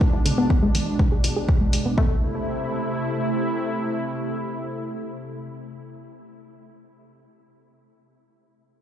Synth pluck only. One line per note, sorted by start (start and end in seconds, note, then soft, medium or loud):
0.01 0.08 E3 medium
0.13 0.18 E4 medium
0.26 0.33 D3 loud
0.38 0.42 B3 medium
0.50 0.54 B3 medium
0.63 0.67 G#3 medium
0.75 0.82 E3 medium
0.99 1.06 G#3 medium
1.12 1.19 G#4 medium
1.24 1.31 E3 medium
1.36 1.43 G#4 medium
1.61 1.68 G#3 medium
1.86 1.93 B3 medium
1.98 2.21 A3 medium